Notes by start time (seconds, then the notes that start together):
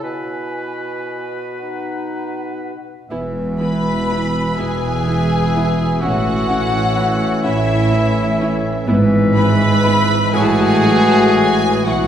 Already playing: E4
0.03 B2 B4 G#5
1.57 D#4 F#5
3.09 E1 E2 B2 E3 B3 E4 B4 E5
3.59 B3 E4 B4 B5
4.10 B3 E4
4.57 E1 E2 B3 E4 G#4 G#5
5.07 B3 E4
5.55 B3 E4
6.01 A1 A2 C#4 E4 F#4 C#5 F#5
6.49 C#4 E4
6.96 C#4 E4
7.43 A1 A2 C#4 E4 E5
7.92 C#4 E4
8.40 C#4 E4
8.87 G#1 G#2 E3 G#3 B3 E4 B4 E5
9.35 B3 E4 B4 B5
9.84 B3 E4
10.33 A1 A2 E3 F#3 E4 F#4 G#4 F#5 G#5
10.42 A5
10.51 G#5
10.60 A5
10.67 G#5
10.75 A5
10.83 F#3 E4 G#5
10.91 A5
11.00 G#5
11.08 A5
11.16 G#5
11.25 A5
11.32 F#3 E4 G#5
11.85 B1 B2 E3 F#3 E4 F#4 F#5